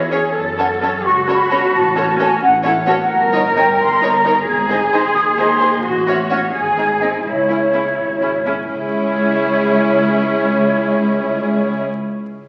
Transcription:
Already playing: E2 E4 C#5
0.11 C#4 G#4 C#5
0.34 F#2 A4
0.57 C#4 A4 C#5 F#5
0.81 C#4 A4 C#5 A5
1.04 C#2 F#4 C#6
1.27 C#4 A4 C#5 B5
1.51 C#4 A4 C#5
1.73 A1 A5
1.95 C#4 A4 C#5
2.18 C#4 A4 C#5 G#5
2.41 A1 C#4 F#5
2.64 C#4 E4 A4 C#5
2.87 C#4 F#4 A4 C#5
3.10 G1 A#4
3.33 D#4 A#4 C#5 D#5
3.56 D#4 A#4 C#5 G5
3.79 G1 C6
4.02 D#4 A#4 C#5 A#5
4.25 D#4 A#4 C#5
4.47 G#1 G#4
4.69 D#4 G#4 C5 G#5
4.93 D#4 G#4 C5 C6
5.15 D#2 D#6
5.38 D#4 G#4 C5 C6
5.61 D#4 G#4 C5
5.84 A1 F#4
6.07 C#4 F#4 C#5 E5
6.30 C#4 F#4 C#5 F#5
6.54 G#1 G#4 G#5
6.77 C4 D#4 G#4
7.01 C4 D#4 G#4 D#5
7.25 C#2 E4 C#5
7.49 C#4 E4 G#4
7.73 C#4 E4 G#4
7.98 G#1
8.22 C#4 E4 G#4
8.46 C#4 E4 G#4
8.70 C#2 C#4 E4 G#4 C#5

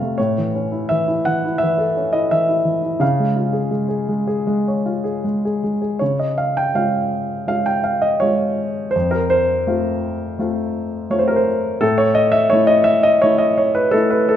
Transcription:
Already playing: F2 C3 F3 A3 C5 F5 A5 A#5 C6
0.02 A3
0.18 A2 C#5
0.38 E3
0.55 C#4
0.72 E4
0.89 E3 E5
1.08 E4
1.25 E3 F#5
1.45 E4
1.58 E5
1.63 E3
1.78 A4
1.97 C#4
2.13 E4 D#5
2.31 E3 E5
2.49 E4
2.65 E3
2.83 E4
3.00 C#3 F5
3.20 G#3
3.36 F4
3.53 G#4
3.71 G#3
3.89 G#4
4.09 G#3
4.27 G#4
4.47 G#3
4.68 C#5
4.86 F4
5.04 G#4
5.24 G#3
5.45 G#4
5.64 G#3
5.82 G#4
5.99 C#3 C#5
6.19 D#5
6.38 F5
6.57 G5
6.74 G#3 C#4 F4 F5
7.47 G#3 C#4 F4 F5
7.66 G5
7.84 F5
8.02 D#5
8.20 G#3 C#4 F4 C#5
8.91 C5
8.96 F2
9.11 A#4
9.30 C5
9.67 A3 C4 F4
10.39 A3 C4 F4
11.10 A3 C4 F4 C#5
11.19 C5
11.28 A#4
11.36 C5
11.81 A2 A4
11.98 C#5
12.15 D#5
12.32 E5
12.50 A3 C#4 E4 C#5
12.67 D#5
12.84 E5
13.03 D#5
13.22 A3 C#4 E4 C#5
13.38 D#5
13.58 C#5
13.75 B4
13.91 A3 C#4 E4 A4
14.10 B4
14.29 A4

